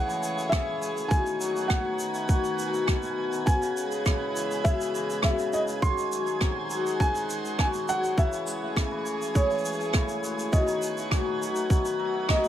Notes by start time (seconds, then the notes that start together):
Already playing: C#3 E3 G#3 A3 F#4 G#4 C#5 F#5 G#5 G#6
0.08 E3, shaker
0.23 E3, shaker
0.37 A3, shaker
0.49 G#4 E5, kick, cross-stick, shaker
0.67 E3
0.82 G#3, shaker
0.97 A3, shaker
1.08 B2 D#3 G#5, kick, shaker
1.26 D#3, shaker
1.40 F#3 F#4, shaker
1.56 A3, shaker
1.61 B4
1.68 B2 F#5, kick, cross-stick, shaker
1.85 D#3
1.99 D#3, shaker
2.14 A3, shaker
2.29 F#4, kick, shaker
2.44 D#3, shaker
2.59 B2, shaker
2.74 B2, shaker
2.88 B2, kick, cross-stick, shaker
3.03 B2, shaker
3.18 B3
3.33 D#3, shaker
3.45 B2 C#3 G#5, kick, shaker
3.62 C#3, shaker
3.77 C#3, shaker
3.83 G#3
3.91 G#3, shaker
4.06 E4, kick, cross-stick, shaker
4.21 C#3
4.32 E3 E4
4.36 shaker
4.51 G#3, shaker
4.64 B2 E5, kick, shaker
4.80 C#3, shaker
4.95 E3, shaker
5.10 G#3, shaker
5.22 B2 E5, kick, cross-stick, shaker
5.39 C#3, shaker
5.53 C#3 D#5, shaker
5.68 G#3, shaker
5.82 D#3 F#4 C6, kick, shaker
5.97 D#3, shaker
6.12 F#3, shaker
6.27 G#3, shaker
6.40 C3 C5, kick, cross-stick, shaker
6.56 D#3
6.70 F#3, shaker
6.74 F#4
6.85 G#3, shaker
7.00 C3 G#5, kick, shaker
7.14 D#3, shaker
7.29 D#3, shaker
7.44 G#3, shaker
7.59 F#4 G#5, kick, cross-stick, shaker
7.74 D#3, shaker
7.88 F#3 F#5, shaker
8.03 G#3, shaker
8.18 C#3 E3 E5, kick, shaker
8.33 E3, shaker
8.47 G#3, shaker
8.55 C#5
8.62 A3 G#4
8.76 C#3, kick, cross-stick, shaker
8.91 E3
9.06 E3, shaker
9.21 A3, shaker
9.35 G#4 C#5, kick, shaker
9.50 E3, shaker
9.58 shaker
9.65 G#3, shaker
9.79 A3, shaker
9.93 C#3, kick, cross-stick, shaker
10.08 E3, shaker
10.23 G#3, shaker
10.38 A3, shaker
10.52 B2 D#3 D#5, kick, shaker
10.67 D#3, shaker
10.76 B4
10.82 D#3, shaker
10.97 A3, shaker
11.01 F#4
11.11 F#4, kick, cross-stick, shaker
11.26 D#3
11.41 F#3, shaker
11.56 A3, shaker
11.70 B2, kick, shaker
11.85 D#3, shaker
11.99 F#3
12.14 A3
12.29 B2 D#5, kick, cross-stick, shaker
12.43 D#3, shaker